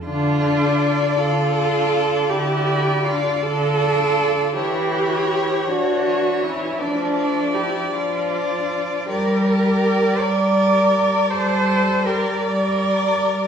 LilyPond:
<<
  \new Staff \with { instrumentName = "Violin" } { \time 12/8 \key d \minor \tempo 4. = 54 r8 d''4. d''4. d''4. d''4 | cis''8 cis''4. cis''4 d''8 d''4. d''4 | d''8 d''4. d''4. d''4. d''4 | }
  \new Staff \with { instrumentName = "Cello" } { \time 12/8 \key d \minor f'4. a'4. g'4 f'8 a'4. | g'4. fis'4 e'8 d'4 g'8 f'4. | bes'4. d''4. c''4 bes'8 d''4. | }
  \new Staff \with { instrumentName = "Violin" } { \time 12/8 \key d \minor d'4. f'4. e'4 d'8 f'4. | e'4. d'4 cis'8 a4 e'8 d'4. | g'4. bes'4. a'4 g'8 bes'4. | }
  \new Staff \with { instrumentName = "Viola" } { \clef bass \time 12/8 \key d \minor d4. d4. d4. d4. | e4. e4. f4. f4. | g4. g4. g4. g4. | }
>>